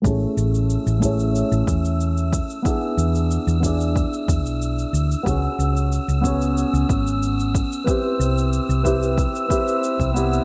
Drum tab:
SH |x-xxxxxxxxxxxxxx|x-xxxxxxxxxxxxxx|x-xxxxxxxxxxxxxx|x-xxxxxxxxxxxxxx|
BD |o-----o---o---o-|o-----o-o-o-----|o-----o---o---o-|o-----o-o-o--o--|